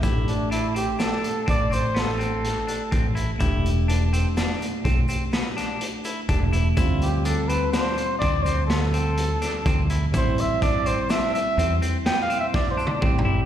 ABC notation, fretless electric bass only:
X:1
M:7/4
L:1/8
Q:1/4=125
K:Am
V:1 name="Fretless electric bass" clef=bass
A,,,4 z2 A,,, A,,,4 z A,,,2 | E,,,4 z2 B,,, z4 z E,,,2 | D,,4 z2 D,, D,,4 z D,,2 | A,,,4 z2 E,, z4 z A,,, G,,, |]